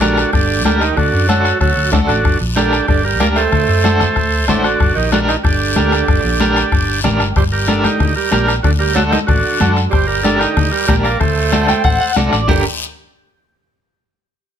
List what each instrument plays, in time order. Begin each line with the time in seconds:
Already playing: fingered electric bass A#1
0.01 tenor saxophone D3, clean electric guitar D4 G4 A#4, transistor combo organ D4 F#4, bombo rim, high conga, short guiro
0.17 bombo rim, short guiro
0.33 fingered electric bass G1, tenor saxophone D3, transistor combo organ D4 G4, bombo low, bombo rim, high conga, long guiro
0.64 fingered electric bass D2, tenor saxophone D3, clean electric guitar D4 G4 A#4, transistor combo organ D4 G4, bombo rim, high conga, short guiro
0.80 tenor saxophone D#3, transistor combo organ D#4 G4, bombo rim, short guiro
0.96 fingered electric bass D2, tenor saxophone D3, transistor combo organ D4 F#4, bombo low, bombo rim, high conga, long guiro
1.13 fingered electric bass F#2
1.28 tenor saxophone F#3, clean electric guitar D4 F#4 A4, transistor combo organ F#4 A4, bombo rim, high conga, short guiro
1.45 bombo rim, short guiro
1.60 fingered electric bass D2, tenor saxophone F#3, transistor combo organ F#4 A4, bombo low, bombo rim, high conga, long guiro
1.77 fingered electric bass D2
1.91 fingered electric bass C2, tenor saxophone A2, transistor combo organ A3 D4, clean electric guitar D4 F#4 A4, bombo low, bombo rim, high conga, low conga, short guiro
2.07 fingered electric bass A1, tenor saxophone D3, transistor combo organ D4 F#4, bombo rim, short guiro
2.25 fingered electric bass G1, bombo low, bombo rim, high conga, long guiro
2.41 fingered electric bass A#1
2.56 tenor saxophone D3, clean electric guitar D4 G4 A#4, transistor combo organ D4 G4, bombo rim, high conga, short guiro
2.73 bombo rim, short guiro
2.87 fingered electric bass G1, tenor saxophone D3, transistor combo organ D4 G4, bombo low, bombo rim, high conga, long guiro
3.04 tenor saxophone G3, transistor combo organ G4 A#4
3.20 fingered electric bass D2, tenor saxophone A#3, clean electric guitar D4 G4 A#4, transistor combo organ A#4 D5, bombo rim, high conga, short guiro
3.36 tenor saxophone A3, transistor combo organ A4 C5, bombo rim, short guiro
3.52 fingered electric bass D2, bombo low, bombo rim, high conga, long guiro
3.68 fingered electric bass F#2
3.84 clean electric guitar D4 F#4 A4, bombo rim, high conga, short guiro
4.00 bombo rim, low conga, short guiro
4.16 fingered electric bass D2, bombo low, bombo rim, high conga, long guiro
4.48 fingered electric bass A1, tenor saxophone A2, transistor combo organ A3 D4, clean electric guitar D4 F#4 C5, bombo rim, high conga, low conga, short guiro
4.64 tenor saxophone D3, transistor combo organ D4 F#4, bombo rim, short guiro
4.80 fingered electric bass G1, bombo low, bombo rim, high conga, long guiro
4.95 fingered electric bass A#1, tenor saxophone D#3, transistor combo organ D#4 G4
5.12 tenor saxophone D3, clean electric guitar D4 G4 A#4, transistor combo organ D4 F#4, bombo rim, high conga, short guiro
5.28 tenor saxophone D#3, transistor combo organ D#4 G4, bombo rim, short guiro
5.44 fingered electric bass G1, tenor saxophone D3, transistor combo organ D4 G4, bombo low, bombo rim, high conga, long guiro
5.76 fingered electric bass D2, clean electric guitar D4 G4 A#4, bombo rim, high conga, short guiro
5.92 bombo rim, short guiro
6.08 fingered electric bass G1, bombo low, bombo rim, high conga, long guiro
6.24 fingered electric bass A#1
6.40 clean electric guitar D4 G4 A#4, bombo rim, high conga, short guiro
6.56 bombo rim, short guiro
6.72 fingered electric bass G1, bombo low, bombo rim, high conga, long guiro
7.04 fingered electric bass A1, clean electric guitar D4 G4 A#4, bombo rim, high conga, low conga, short guiro
7.20 fingered electric bass G1, bombo rim, short guiro
7.36 fingered electric bass G1, tenor saxophone G3, transistor combo organ G4 C5, bombo low, bombo rim, low conga, long guiro
7.52 tenor saxophone G3, transistor combo organ G4 A#4
7.68 tenor saxophone D3, clean electric guitar D4 G4 A#4, transistor combo organ D4 A4, bombo rim, high conga, short guiro
7.84 tenor saxophone D3, transistor combo organ D#4 G4, bombo rim, high conga, short guiro
8.00 fingered electric bass D2, bombo low, bombo rim, low conga, long guiro
8.16 tenor saxophone G3, transistor combo organ G4 A#4
8.31 fingered electric bass A#1, tenor saxophone G3, clean electric guitar D4 G4 A#4, transistor combo organ G4 A#4, bombo rim, high conga, short guiro
8.48 tenor saxophone G3, transistor combo organ G4 A#4, bombo rim, short guiro
8.63 fingered electric bass D2, tenor saxophone D3, transistor combo organ D4 F#4, bombo low, bombo rim, low conga, long guiro
8.79 tenor saxophone G3, transistor combo organ G4 A#4
8.95 tenor saxophone F#3, clean electric guitar D4 F#4 A4, transistor combo organ F#4 A4, bombo rim, high conga, short guiro
9.10 tenor saxophone D#3, transistor combo organ D#4 G4, bombo rim, high conga, short guiro
9.27 fingered electric bass A1, tenor saxophone D3, transistor combo organ D4 F#4, bombo low, bombo rim, low conga, long guiro
9.60 fingered electric bass F#2, clean electric guitar D4 F#4 A4, bombo rim, high conga, low conga, short guiro
9.76 bombo rim, short guiro
9.90 fingered electric bass G1, tenor saxophone G3, transistor combo organ G4 C5, bombo low, bombo rim, long guiro
10.07 tenor saxophone G3, transistor combo organ G4 A#4
10.22 tenor saxophone D3, clean electric guitar D4 G4 A#4, transistor combo organ D4 A4, bombo rim, high conga, short guiro
10.38 tenor saxophone D3, transistor combo organ D#4 G4, bombo rim, short guiro
10.57 fingered electric bass D2, bombo low, bombo rim, low conga, long guiro
10.71 tenor saxophone G3, transistor combo organ G4 A#4
10.87 fingered electric bass A#1, tenor saxophone G3, clean electric guitar D4 G4 A#4, transistor combo organ G4 A#4, bombo low, bombo rim, high conga, low conga, short guiro
11.03 tenor saxophone A#3, transistor combo organ A#4 D5, bombo rim, short guiro
11.20 fingered electric bass D2, tenor saxophone A3, transistor combo organ A4 C5, bombo low, bombo rim, low conga, long guiro
11.52 clean electric guitar D4 F#4 A4, bombo rim, high conga, short guiro
11.68 clean electric guitar G5, bombo rim, high conga, short guiro
11.84 fingered electric bass A1, clean electric guitar F#5, bombo low, bombo rim, low conga, long guiro
12.01 clean electric guitar F#5
12.16 fingered electric bass C2, clean electric guitar D4 F#4 A4 D5, bombo rim, high conga, short guiro
12.33 fingered electric bass A1, clean electric guitar D5, bombo rim, short guiro
12.48 fingered electric bass G1, tenor saxophone D3, clean electric guitar D4 G4 A#4, transistor combo organ G4, bombo low, low conga, long guiro